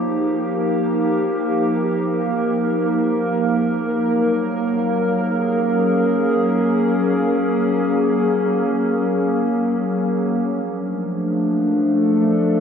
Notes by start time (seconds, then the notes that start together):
Already playing: F3 A#3 D#4 G4
0.10 A#4
4.05 F#3
5.08 G#4
5.52 C#4
10.47 F3
10.76 A3 D4
11.71 A4
11.94 D5